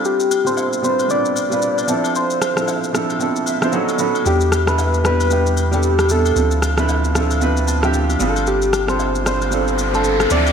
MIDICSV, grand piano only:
0, 0, Header, 1, 2, 480
1, 0, Start_track
1, 0, Tempo, 526316
1, 44, Time_signature, 4, 2, 24, 8
1, 9597, End_track
2, 0, Start_track
2, 0, Title_t, "Grand piano"
2, 0, Program_c, 0, 0
2, 0, Control_c, 0, 64, 127
2, 0, Note_on_c, 0, 55, 89
2, 0, Note_on_c, 0, 60, 83
2, 0, Note_on_c, 0, 62, 81
2, 0, Note_on_c, 0, 65, 82
2, 0, Note_on_c, 0, 69, 98
2, 276, Note_off_c, 0, 55, 0
2, 279, Note_off_c, 0, 60, 0
2, 283, Note_off_c, 0, 62, 0
2, 287, Note_off_c, 0, 65, 0
2, 291, Note_off_c, 0, 69, 0
2, 405, Note_on_c, 0, 55, 70
2, 412, Note_on_c, 0, 60, 61
2, 420, Note_on_c, 0, 62, 62
2, 427, Note_on_c, 0, 65, 63
2, 435, Note_on_c, 0, 69, 75
2, 694, Note_off_c, 0, 55, 0
2, 698, Note_off_c, 0, 60, 0
2, 702, Note_off_c, 0, 62, 0
2, 706, Note_off_c, 0, 65, 0
2, 709, Note_off_c, 0, 69, 0
2, 748, Note_on_c, 0, 55, 72
2, 755, Note_on_c, 0, 60, 64
2, 763, Note_on_c, 0, 62, 64
2, 770, Note_on_c, 0, 65, 61
2, 777, Note_on_c, 0, 71, 73
2, 956, Note_off_c, 0, 55, 0
2, 959, Note_off_c, 0, 60, 0
2, 963, Note_off_c, 0, 62, 0
2, 967, Note_off_c, 0, 65, 0
2, 970, Note_off_c, 0, 71, 0
2, 986, Note_on_c, 0, 55, 71
2, 993, Note_on_c, 0, 60, 66
2, 1001, Note_on_c, 0, 62, 68
2, 1008, Note_on_c, 0, 65, 64
2, 1016, Note_on_c, 0, 71, 77
2, 1291, Note_off_c, 0, 55, 0
2, 1294, Note_off_c, 0, 60, 0
2, 1298, Note_off_c, 0, 62, 0
2, 1302, Note_off_c, 0, 65, 0
2, 1306, Note_off_c, 0, 71, 0
2, 1366, Note_on_c, 0, 55, 76
2, 1373, Note_on_c, 0, 60, 66
2, 1381, Note_on_c, 0, 62, 65
2, 1388, Note_on_c, 0, 65, 70
2, 1396, Note_on_c, 0, 71, 85
2, 1655, Note_off_c, 0, 55, 0
2, 1658, Note_off_c, 0, 60, 0
2, 1662, Note_off_c, 0, 62, 0
2, 1666, Note_off_c, 0, 65, 0
2, 1670, Note_off_c, 0, 71, 0
2, 1706, Note_on_c, 0, 53, 89
2, 1714, Note_on_c, 0, 60, 81
2, 1721, Note_on_c, 0, 62, 80
2, 1727, Note_on_c, 0, 64, 80
2, 1735, Note_on_c, 0, 69, 94
2, 1736, Control_c, 0, 64, 0
2, 1914, Control_c, 0, 64, 127
2, 2195, Note_off_c, 0, 53, 0
2, 2199, Note_off_c, 0, 60, 0
2, 2202, Note_off_c, 0, 62, 0
2, 2205, Note_off_c, 0, 64, 0
2, 2209, Note_off_c, 0, 69, 0
2, 2325, Note_on_c, 0, 53, 72
2, 2333, Note_on_c, 0, 60, 64
2, 2341, Note_on_c, 0, 62, 65
2, 2348, Note_on_c, 0, 64, 61
2, 2355, Note_on_c, 0, 69, 78
2, 2614, Note_off_c, 0, 53, 0
2, 2618, Note_off_c, 0, 60, 0
2, 2622, Note_off_c, 0, 62, 0
2, 2626, Note_off_c, 0, 64, 0
2, 2629, Note_off_c, 0, 69, 0
2, 2668, Note_on_c, 0, 53, 81
2, 2675, Note_on_c, 0, 60, 74
2, 2682, Note_on_c, 0, 62, 76
2, 2690, Note_on_c, 0, 64, 73
2, 2697, Note_on_c, 0, 69, 90
2, 2876, Note_off_c, 0, 53, 0
2, 2879, Note_off_c, 0, 60, 0
2, 2883, Note_off_c, 0, 62, 0
2, 2886, Note_off_c, 0, 64, 0
2, 2890, Note_off_c, 0, 69, 0
2, 2907, Note_on_c, 0, 53, 83
2, 2916, Note_on_c, 0, 60, 80
2, 2923, Note_on_c, 0, 62, 78
2, 2930, Note_on_c, 0, 64, 80
2, 2938, Note_on_c, 0, 69, 94
2, 3164, Note_on_c, 0, 76, 69
2, 3211, Note_off_c, 0, 53, 0
2, 3215, Note_off_c, 0, 60, 0
2, 3219, Note_off_c, 0, 62, 0
2, 3223, Note_off_c, 0, 64, 0
2, 3227, Note_off_c, 0, 69, 0
2, 3290, Note_on_c, 0, 53, 87
2, 3297, Note_on_c, 0, 60, 80
2, 3304, Note_on_c, 0, 62, 78
2, 3311, Note_on_c, 0, 64, 81
2, 3319, Note_on_c, 0, 72, 96
2, 3387, Note_off_c, 0, 76, 0
2, 3391, Note_on_c, 0, 54, 89
2, 3397, Note_off_c, 0, 53, 0
2, 3398, Note_on_c, 0, 59, 82
2, 3401, Note_off_c, 0, 60, 0
2, 3404, Note_off_c, 0, 62, 0
2, 3405, Note_on_c, 0, 61, 80
2, 3405, Note_on_c, 0, 78, 73
2, 3408, Note_off_c, 0, 64, 0
2, 3412, Note_off_c, 0, 72, 0
2, 3412, Note_on_c, 0, 63, 81
2, 3413, Control_c, 0, 64, 0
2, 3420, Note_on_c, 0, 69, 102
2, 3584, Control_c, 0, 64, 127
2, 3597, Note_off_c, 0, 54, 0
2, 3601, Note_off_c, 0, 59, 0
2, 3604, Note_off_c, 0, 61, 0
2, 3608, Note_off_c, 0, 63, 0
2, 3612, Note_off_c, 0, 69, 0
2, 3628, Note_off_c, 0, 78, 0
2, 3631, Note_on_c, 0, 54, 82
2, 3639, Note_on_c, 0, 59, 77
2, 3645, Note_on_c, 0, 83, 68
2, 3646, Note_on_c, 0, 61, 76
2, 3653, Note_on_c, 0, 63, 73
2, 3661, Note_on_c, 0, 69, 91
2, 3837, Note_off_c, 0, 54, 0
2, 3841, Note_off_c, 0, 59, 0
2, 3845, Note_off_c, 0, 61, 0
2, 3848, Note_off_c, 0, 63, 0
2, 3852, Note_off_c, 0, 69, 0
2, 3868, Note_off_c, 0, 83, 0
2, 3870, Note_on_c, 0, 55, 69
2, 3877, Note_on_c, 0, 59, 63
2, 3885, Note_on_c, 0, 62, 65
2, 3893, Note_on_c, 0, 64, 61
2, 3895, Control_c, 0, 64, 0
2, 3899, Note_on_c, 0, 67, 73
2, 4074, Control_c, 0, 64, 127
2, 4173, Note_off_c, 0, 55, 0
2, 4176, Note_off_c, 0, 59, 0
2, 4180, Note_off_c, 0, 62, 0
2, 4184, Note_off_c, 0, 64, 0
2, 4187, Note_off_c, 0, 67, 0
2, 4249, Note_on_c, 0, 55, 70
2, 4255, Note_on_c, 0, 59, 65
2, 4263, Note_on_c, 0, 62, 63
2, 4271, Note_on_c, 0, 64, 64
2, 4278, Note_on_c, 0, 69, 73
2, 4536, Note_off_c, 0, 55, 0
2, 4540, Note_off_c, 0, 59, 0
2, 4543, Note_off_c, 0, 62, 0
2, 4548, Note_off_c, 0, 64, 0
2, 4551, Note_off_c, 0, 69, 0
2, 4591, Note_on_c, 0, 55, 68
2, 4599, Note_on_c, 0, 59, 63
2, 4606, Note_on_c, 0, 62, 61
2, 4614, Note_on_c, 0, 64, 61
2, 4621, Note_on_c, 0, 67, 78
2, 4797, Note_off_c, 0, 55, 0
2, 4801, Note_off_c, 0, 59, 0
2, 4805, Note_off_c, 0, 62, 0
2, 4809, Note_off_c, 0, 64, 0
2, 4812, Note_off_c, 0, 67, 0
2, 4830, Note_on_c, 0, 55, 72
2, 4837, Note_on_c, 0, 59, 62
2, 4844, Note_on_c, 0, 62, 63
2, 4852, Note_on_c, 0, 64, 67
2, 4859, Note_on_c, 0, 67, 78
2, 5133, Note_off_c, 0, 55, 0
2, 5136, Note_off_c, 0, 59, 0
2, 5140, Note_off_c, 0, 62, 0
2, 5143, Note_off_c, 0, 64, 0
2, 5147, Note_off_c, 0, 67, 0
2, 5209, Note_on_c, 0, 55, 74
2, 5216, Note_on_c, 0, 59, 66
2, 5223, Note_on_c, 0, 62, 70
2, 5231, Note_on_c, 0, 64, 66
2, 5238, Note_on_c, 0, 69, 79
2, 5497, Note_off_c, 0, 55, 0
2, 5500, Note_off_c, 0, 59, 0
2, 5503, Note_off_c, 0, 62, 0
2, 5507, Note_off_c, 0, 64, 0
2, 5511, Note_off_c, 0, 69, 0
2, 5548, Note_on_c, 0, 55, 68
2, 5556, Note_on_c, 0, 59, 65
2, 5562, Note_on_c, 0, 62, 64
2, 5571, Note_on_c, 0, 64, 63
2, 5577, Note_on_c, 0, 69, 82
2, 5756, Note_off_c, 0, 55, 0
2, 5760, Note_off_c, 0, 59, 0
2, 5763, Note_off_c, 0, 62, 0
2, 5767, Note_off_c, 0, 64, 0
2, 5770, Note_off_c, 0, 69, 0
2, 5789, Note_on_c, 0, 53, 71
2, 5796, Note_on_c, 0, 60, 62
2, 5804, Note_on_c, 0, 62, 62
2, 5811, Note_on_c, 0, 64, 62
2, 5816, Control_c, 0, 64, 0
2, 5818, Note_on_c, 0, 69, 79
2, 5948, Control_c, 0, 64, 127
2, 6092, Note_off_c, 0, 53, 0
2, 6096, Note_off_c, 0, 60, 0
2, 6099, Note_off_c, 0, 62, 0
2, 6103, Note_off_c, 0, 64, 0
2, 6107, Note_off_c, 0, 69, 0
2, 6168, Note_on_c, 0, 53, 78
2, 6176, Note_on_c, 0, 60, 77
2, 6183, Note_on_c, 0, 62, 79
2, 6190, Note_on_c, 0, 64, 78
2, 6198, Note_on_c, 0, 71, 91
2, 6456, Note_off_c, 0, 53, 0
2, 6460, Note_off_c, 0, 60, 0
2, 6463, Note_off_c, 0, 62, 0
2, 6467, Note_off_c, 0, 64, 0
2, 6471, Note_off_c, 0, 71, 0
2, 6510, Note_on_c, 0, 53, 84
2, 6517, Note_on_c, 0, 60, 76
2, 6524, Note_on_c, 0, 62, 78
2, 6532, Note_on_c, 0, 64, 75
2, 6539, Note_on_c, 0, 69, 88
2, 6717, Note_off_c, 0, 53, 0
2, 6720, Note_off_c, 0, 60, 0
2, 6724, Note_off_c, 0, 62, 0
2, 6728, Note_off_c, 0, 64, 0
2, 6731, Note_off_c, 0, 69, 0
2, 6750, Note_on_c, 0, 53, 85
2, 6757, Note_on_c, 0, 60, 79
2, 6765, Note_on_c, 0, 62, 79
2, 6772, Note_on_c, 0, 64, 75
2, 6779, Note_on_c, 0, 71, 96
2, 7004, Note_on_c, 0, 81, 69
2, 7052, Note_off_c, 0, 53, 0
2, 7056, Note_off_c, 0, 60, 0
2, 7060, Note_off_c, 0, 62, 0
2, 7064, Note_off_c, 0, 64, 0
2, 7067, Note_off_c, 0, 71, 0
2, 7127, Note_on_c, 0, 53, 89
2, 7136, Note_on_c, 0, 60, 78
2, 7143, Note_on_c, 0, 62, 80
2, 7151, Note_on_c, 0, 64, 79
2, 7157, Note_on_c, 0, 67, 100
2, 7227, Note_off_c, 0, 81, 0
2, 7244, Note_on_c, 0, 79, 70
2, 7416, Note_off_c, 0, 53, 0
2, 7420, Note_off_c, 0, 60, 0
2, 7423, Note_off_c, 0, 62, 0
2, 7427, Note_off_c, 0, 64, 0
2, 7430, Note_off_c, 0, 67, 0
2, 7467, Note_off_c, 0, 79, 0
2, 7471, Note_on_c, 0, 55, 86
2, 7478, Note_on_c, 0, 60, 86
2, 7485, Note_on_c, 0, 62, 82
2, 7486, Note_on_c, 0, 77, 71
2, 7493, Note_on_c, 0, 65, 80
2, 7497, Control_c, 0, 64, 0
2, 7499, Note_on_c, 0, 68, 78
2, 7558, Note_on_c, 0, 69, 98
2, 7559, Note_off_c, 0, 68, 0
2, 7662, Control_c, 0, 64, 127
2, 7708, Note_off_c, 0, 77, 0
2, 7957, Note_off_c, 0, 55, 0
2, 7961, Note_off_c, 0, 60, 0
2, 7965, Note_off_c, 0, 62, 0
2, 7969, Note_off_c, 0, 65, 0
2, 8001, Note_off_c, 0, 69, 0
2, 8087, Note_on_c, 0, 55, 68
2, 8095, Note_on_c, 0, 60, 62
2, 8102, Note_on_c, 0, 62, 65
2, 8110, Note_on_c, 0, 65, 64
2, 8117, Note_on_c, 0, 69, 76
2, 8375, Note_off_c, 0, 55, 0
2, 8379, Note_off_c, 0, 60, 0
2, 8383, Note_off_c, 0, 62, 0
2, 8387, Note_off_c, 0, 65, 0
2, 8390, Note_off_c, 0, 69, 0
2, 8427, Note_on_c, 0, 55, 67
2, 8433, Note_on_c, 0, 60, 62
2, 8441, Note_on_c, 0, 62, 64
2, 8448, Note_on_c, 0, 65, 61
2, 8456, Note_on_c, 0, 72, 77
2, 8635, Note_off_c, 0, 55, 0
2, 8638, Note_off_c, 0, 60, 0
2, 8642, Note_off_c, 0, 62, 0
2, 8646, Note_off_c, 0, 65, 0
2, 8650, Note_off_c, 0, 72, 0
2, 8667, Note_on_c, 0, 55, 74
2, 8675, Note_on_c, 0, 60, 65
2, 8682, Note_on_c, 0, 62, 63
2, 8690, Note_on_c, 0, 65, 65
2, 8697, Note_on_c, 0, 69, 83
2, 8971, Note_off_c, 0, 55, 0
2, 8975, Note_off_c, 0, 60, 0
2, 8979, Note_off_c, 0, 62, 0
2, 8982, Note_off_c, 0, 65, 0
2, 8986, Note_off_c, 0, 69, 0
2, 9047, Note_on_c, 0, 55, 75
2, 9055, Note_on_c, 0, 60, 67
2, 9062, Note_on_c, 0, 62, 66
2, 9069, Note_on_c, 0, 65, 70
2, 9076, Note_on_c, 0, 72, 80
2, 9336, Note_off_c, 0, 55, 0
2, 9339, Note_off_c, 0, 60, 0
2, 9343, Note_off_c, 0, 62, 0
2, 9347, Note_off_c, 0, 65, 0
2, 9350, Note_off_c, 0, 72, 0
2, 9389, Note_on_c, 0, 52, 58
2, 9397, Note_on_c, 0, 60, 68
2, 9404, Note_on_c, 0, 62, 68
2, 9411, Note_on_c, 0, 64, 72
2, 9414, Control_c, 0, 64, 0
2, 9419, Note_on_c, 0, 69, 84
2, 9447, Note_on_c, 0, 53, 71
2, 9464, Note_off_c, 0, 52, 0
2, 9584, Control_c, 0, 64, 127
2, 9597, Note_off_c, 0, 53, 0
2, 9597, Note_off_c, 0, 60, 0
2, 9597, Note_off_c, 0, 62, 0
2, 9597, Note_off_c, 0, 64, 0
2, 9597, Note_off_c, 0, 69, 0
2, 9597, End_track
0, 0, End_of_file